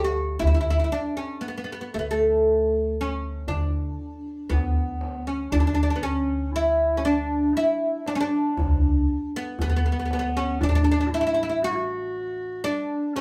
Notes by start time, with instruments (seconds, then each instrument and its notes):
Already playing: upright bass D2
0.04 oud F#4
0.39 upright bass D2, oud E4, darbuka dum
0.47 oud E4
0.54 oud E4
0.61 oud E4
0.70 oud E4
0.80 oud E4
0.84 oud E4
0.92 oud D4
1.17 oud C#4
1.41 oud B3
1.45 oud B3, darbuka ka
1.58 oud B3
1.64 oud B3
1.72 oud B3
1.81 oud B3
1.94 upright bass D2, oud A3, darbuka ka
1.99 oud B3
2.11 oud A3
3.01 oud C#4
3.48 upright bass D3, oud D4, darbuka dum
3.99 darbuka ka
4.25 darbuka ka
4.50 upright bass D2, oud B3, clarinet B3, darbuka dum
5.01 darbuka tek
5.27 clarinet C#4, oud C#4
5.52 upright bass D2, clarinet D4, oud D4, darbuka dum
5.59 oud D4, clarinet E4
5.65 clarinet D4, oud D4
5.75 oud D4
5.83 oud D4
5.90 oud D4
5.96 oud B3
6.01 clarinet C#4, oud C#4
6.52 clarinet E4, oud E4, darbuka ka
6.97 oud C#4
7.04 clarinet D4, oud D4
7.54 clarinet E4, oud E4
8.06 clarinet D4, oud D4, darbuka tek
8.15 oud C#4
8.21 oud D4, clarinet D4
8.57 upright bass C#2, darbuka dum
9.09 darbuka ka
9.34 oud B3, darbuka ka
9.58 upright bass D2, clarinet B3, oud B3, darbuka dum
9.70 oud B3
9.76 oud B3
9.86 oud B3
9.92 oud B3
10.00 oud B3
10.06 oud B3
10.11 oud B3, darbuka tek
10.19 oud B3
10.37 oud C#4
10.60 upright bass A1, clarinet D4, oud D4, darbuka dum
10.69 oud D4
10.75 oud D4
10.84 oud D4
10.91 oud D4
11.00 oud D4
11.06 clarinet F#4
11.10 clarinet E4, oud E4
11.21 oud E4
11.27 oud E4
11.34 oud E4
11.43 oud E4
11.49 oud E4
11.62 clarinet F#4, oud F#4
11.70 clarinet E4
11.75 clarinet F#4
12.15 darbuka ka
12.64 oud D4, clarinet D4
13.15 clarinet C#4, oud C#4, darbuka tek